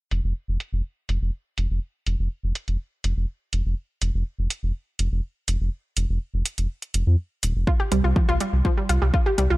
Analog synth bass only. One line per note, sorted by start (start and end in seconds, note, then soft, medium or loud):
0.11 0.21 F1 medium
0.24 0.33 F1 medium
0.48 0.57 F1 medium
0.72 0.81 F1 medium
1.09 1.18 F1 medium
1.21 1.30 F1 medium
1.58 1.67 F1 medium
1.70 1.79 F1 medium
2.06 2.16 F1 medium
2.19 2.28 F1 medium
2.43 2.52 F1 medium
2.68 2.77 F1 medium
3.04 3.13 F1 medium
3.16 3.25 F1 medium
3.53 3.62 F1 medium
3.65 3.74 F1 medium
4.02 4.11 F1 medium
4.14 4.23 F1 medium
4.38 4.47 F1 medium
4.63 4.72 F1 medium
4.99 5.09 F1 medium
5.12 5.21 F1 medium
5.48 5.57 F1 medium
5.60 5.69 F1 medium
5.97 6.06 F1 medium
6.09 6.18 F1 medium
6.34 6.43 F1 medium
6.58 6.67 F1 medium
6.94 7.04 F1 medium
7.07 7.16 F2 medium
7.43 7.52 D#1 medium
7.55 7.64 F1 medium
7.92 8.01 C2 medium
8.04 8.13 C2 medium
8.29 8.38 C2 medium
8.53 8.62 C2 medium
8.89 8.99 C2 medium
9.02 9.11 C2 medium
9.38 9.48 C2 medium
9.51 9.57 C2 medium